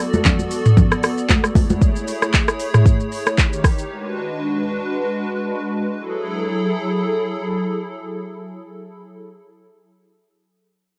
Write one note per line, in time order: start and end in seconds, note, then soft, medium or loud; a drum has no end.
0.00 1.54 B3 medium
0.00 1.53 F#4 medium
0.00 1.53 A4 medium
0.00 1.54 D5 medium
0.13 high conga medium
0.13 shaker medium
0.25 kick loud
0.25 clap medium
0.25 low conga medium
0.25 shaker medium
0.39 high conga soft
0.39 shaker medium
0.51 open hi-hat medium
0.51 shaker loud
0.66 mid tom loud
0.66 shaker medium
0.77 kick loud
0.77 low conga medium
0.77 shaker medium
0.92 cross-stick loud
0.92 shaker soft
1.03 cross-stick loud
1.03 open hi-hat medium
1.03 shaker medium
1.18 shaker medium
1.29 kick loud
1.29 clap medium
1.29 high conga medium
1.29 shaker medium
1.44 cross-stick loud
1.44 shaker medium
1.55 3.36 A3 medium
1.55 3.36 E4 medium
1.55 3.36 G#4 medium
1.55 3.88 C#5 medium
1.55 kick loud
1.55 open hi-hat medium
1.55 high conga medium
1.55 shaker medium
1.70 high conga medium
1.70 shaker medium
1.81 kick loud
1.81 shaker medium
1.96 shaker medium
2.08 open hi-hat soft
2.08 shaker medium
2.22 cross-stick loud
2.22 shaker medium
2.34 kick medium
2.34 clap loud
2.34 shaker medium
2.48 cross-stick loud
2.48 shaker medium
2.59 open hi-hat medium
2.59 shaker medium
2.74 cross-stick medium
2.74 mid tom loud
2.74 shaker medium
2.86 kick loud
2.86 shaker medium
3.00 shaker soft
3.12 open hi-hat medium
3.12 shaker medium
3.26 cross-stick loud
3.26 shaker medium
3.38 3.90 D#3 medium
3.38 3.90 D#4 medium
3.38 3.90 G4 medium
3.38 kick loud
3.38 clap medium
3.38 shaker medium
3.53 shaker medium
3.64 kick loud
3.64 cross-stick loud
3.64 open hi-hat medium
3.64 shaker medium
3.78 shaker soft
3.90 5.97 G#3 medium
3.90 5.97 D4 medium
3.90 5.97 F#4 medium
3.90 5.97 B4 medium
5.99 9.04 F#3 medium
5.99 9.04 E4 medium
5.99 9.04 G#4 medium
5.99 9.04 A4 medium